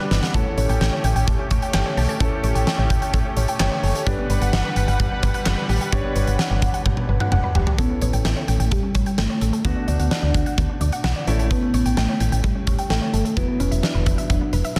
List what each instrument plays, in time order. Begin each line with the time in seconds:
Already playing: analog synth pad G3 B4 F#5, grand piano D4 G4 B4
0.00 synth arpeggio sound G3
0.11 fm bass G1, synth arpeggio sound B3, snare
0.23 synth arpeggio sound F#5, snare
0.34 fm bass A1, synth arpeggio sound A3, analog synth pad A3 C#4 G4, grand piano C#4 E4 A4, kick, closed hi-hat
0.46 synth arpeggio sound C#4
0.58 fm bass A1, synth arpeggio sound C#5, closed hi-hat
0.69 fm bass A1, synth arpeggio sound G5, closed hi-hat
0.81 fm bass A1, synth arpeggio sound G5, snare
0.93 synth arpeggio sound C#5
1.04 fm bass A1, synth arpeggio sound G5, closed hi-hat
1.16 fm bass A1, synth arpeggio sound G5, closed hi-hat
1.27 fm bass A1, synth arpeggio sound A3, kick, closed hi-hat
1.39 synth arpeggio sound C#4
1.51 fm bass A1, synth arpeggio sound C#5, kick, closed hi-hat
1.62 synth arpeggio sound G5, closed hi-hat
1.74 fm bass G1, synth arpeggio sound G5, snare, clap
1.86 synth arpeggio sound C#5
1.97 fm bass B1, synth arpeggio sound A4, open hi-hat
2.09 synth arpeggio sound A4, closed hi-hat
2.20 fm bass A1, synth arpeggio sound A3, grand piano C#4 E4 A4, kick, closed hi-hat
2.32 synth arpeggio sound C#4
2.44 fm bass A1, synth arpeggio sound C#5, closed hi-hat
2.55 fm bass A1, synth arpeggio sound G5, closed hi-hat
2.67 synth arpeggio sound G5, snare
2.79 fm bass A1, synth arpeggio sound C#5
2.90 fm bass A1, synth arpeggio sound G5, kick, closed hi-hat
3.02 synth arpeggio sound G5, closed hi-hat
3.13 fm bass A1, synth arpeggio sound A3, kick, closed hi-hat
3.25 synth arpeggio sound C#4
3.37 fm bass A1, synth arpeggio sound C#5, closed hi-hat
3.48 synth arpeggio sound G5, closed hi-hat
3.60 fm bass G1, grand piano C#5, synth arpeggio sound G5, snare, clap
3.72 synth arpeggio sound C#5
3.83 fm bass F#1, synth arpeggio sound A4, open hi-hat
3.95 synth arpeggio sound A4, closed hi-hat
4.07 fm bass G1, analog synth pad G3 B4 F#5, synth arpeggio sound G3, grand piano D4 G4 B4, kick, closed hi-hat
4.18 synth arpeggio sound B3
4.30 fm bass G1, synth arpeggio sound B4, closed hi-hat
4.41 fm bass G1, synth arpeggio sound F#5, closed hi-hat
4.53 fm bass G1, synth arpeggio sound F#5, snare
4.65 synth arpeggio sound B4
4.76 fm bass G1, synth arpeggio sound F#5, closed hi-hat
4.88 fm bass G1, synth arpeggio sound F#5, closed hi-hat
5.00 fm bass G1, synth arpeggio sound G3, kick, closed hi-hat
5.12 synth arpeggio sound B3
5.23 fm bass G1, synth arpeggio sound B4, kick, closed hi-hat
5.34 synth arpeggio sound F#5, closed hi-hat
5.46 fm bass F#1, synth arpeggio sound F#5, snare, clap
5.58 synth arpeggio sound B4
5.69 fm bass A1, synth arpeggio sound G4, open hi-hat
5.81 synth arpeggio sound G4, closed hi-hat
5.92 fm bass G1, synth arpeggio sound G3, grand piano D4 G4 C#5, kick, closed hi-hat
6.04 synth arpeggio sound B3
6.16 fm bass G1, synth arpeggio sound B4, closed hi-hat
6.27 fm bass G1, synth arpeggio sound F#5, closed hi-hat
6.39 synth arpeggio sound F#5, snare
6.51 fm bass G1, synth arpeggio sound B4
6.62 fm bass G1, synth arpeggio sound F#5, kick, closed hi-hat
6.74 synth arpeggio sound F#5, closed hi-hat
6.86 fm bass G1, synth arpeggio sound G3, kick, high tom
6.97 synth arpeggio sound B3, high tom
7.09 fm bass G1, synth arpeggio sound B4
7.20 synth arpeggio sound F#5, mid tom
7.32 fm bass F#1, synth arpeggio sound F#5, mid tom
7.44 synth arpeggio sound B4
7.55 fm bass E1, synth arpeggio sound G4, floor tom
7.67 synth arpeggio sound G4, floor tom
7.78 fm bass A1, synth arpeggio sound A3, soft synth lead B3, grand piano C#4 E4 A4, kick, closed hi-hat
7.90 synth arpeggio sound C#4
8.02 fm bass A1, soft synth lead B3, synth arpeggio sound C#5, closed hi-hat
8.13 fm bass A1, synth arpeggio sound G5, closed hi-hat
8.25 fm bass A1, soft synth lead A3, synth arpeggio sound G5, snare
8.37 synth arpeggio sound C#5
8.48 fm bass A1, synth arpeggio sound G5, closed hi-hat
8.60 fm bass A1, synth arpeggio sound G5, closed hi-hat
8.71 fm bass A1, soft synth lead G3, synth arpeggio sound A3, kick, closed hi-hat
8.83 synth arpeggio sound C#4
8.95 fm bass A1, synth arpeggio sound C#5, kick, closed hi-hat
9.06 synth arpeggio sound G5, closed hi-hat
9.18 fm bass G1, soft synth lead A3, synth arpeggio sound G5, snare
9.30 synth arpeggio sound C#5
9.41 fm bass A1, synth arpeggio sound A4, closed hi-hat
9.53 synth arpeggio sound A4, closed hi-hat
9.65 fm bass D2, grand piano A3 D4 F#4, synth arpeggio sound B3, soft synth lead B3, kick, closed hi-hat
9.76 synth arpeggio sound D4
9.88 fm bass D2, synth arpeggio sound D5, closed hi-hat
9.99 fm bass D2, synth arpeggio sound F#5, closed hi-hat
10.11 soft synth lead D4, synth arpeggio sound F#5, snare
10.23 fm bass D2, synth arpeggio sound D5
10.34 fm bass D2, synth arpeggio sound F#5, kick, closed hi-hat
10.46 synth arpeggio sound F#5, closed hi-hat
10.58 fm bass D2, synth arpeggio sound B3, kick, closed hi-hat
10.70 synth arpeggio sound D4
10.81 fm bass D2, synth arpeggio sound D5, closed hi-hat
10.92 synth arpeggio sound F#5, closed hi-hat
11.04 fm bass B1, synth arpeggio sound F#5, snare
11.16 synth arpeggio sound D5
11.27 fm bass A1, grand piano A3 C#4 E4, synth arpeggio sound A4, closed hi-hat
11.39 synth arpeggio sound A4, closed hi-hat
11.51 synth arpeggio sound A3, soft synth lead B3, kick, closed hi-hat
11.63 synth arpeggio sound C#4
11.74 fm bass A1, synth arpeggio sound C#5, closed hi-hat
11.86 fm bass A1, synth arpeggio sound G5, closed hi-hat
11.97 fm bass A1, soft synth lead A3, synth arpeggio sound G5, snare
12.09 synth arpeggio sound C#5
12.20 fm bass A1, synth arpeggio sound G5, closed hi-hat
12.32 fm bass A1, synth arpeggio sound G5, closed hi-hat
12.44 fm bass A1, soft synth lead G3, synth arpeggio sound A3, kick, closed hi-hat
12.55 synth arpeggio sound C#4
12.67 fm bass A1, synth arpeggio sound C#5, kick, closed hi-hat
12.79 synth arpeggio sound G5, closed hi-hat
12.90 fm bass A1, soft synth lead A3, synth arpeggio sound G5, snare
13.02 synth arpeggio sound C#5
13.13 fm bass G1, soft synth lead A3, synth arpeggio sound A4, closed hi-hat
13.25 synth arpeggio sound A4, closed hi-hat
13.37 fm bass E1, synth arpeggio sound F#3, grand piano F#3 B3 E4, soft synth lead B3, kick, closed hi-hat
13.48 synth arpeggio sound B3
13.60 fm bass E1, soft synth lead C#4, synth arpeggio sound B4, closed hi-hat
13.71 fm bass E1, synth arpeggio sound E5, closed hi-hat
13.83 soft synth lead D4, synth arpeggio sound E5, snare
13.95 fm bass E1, synth arpeggio sound B4
14.06 fm bass E1, synth arpeggio sound E5, kick, closed hi-hat
14.18 synth arpeggio sound E5, closed hi-hat
14.30 fm bass E1, synth arpeggio sound F#3, kick, closed hi-hat
14.41 synth arpeggio sound B3
14.53 fm bass E1, synth arpeggio sound B4, closed hi-hat
14.65 synth arpeggio sound E5, closed hi-hat
14.76 fm bass F#1, synth arpeggio sound E5, snare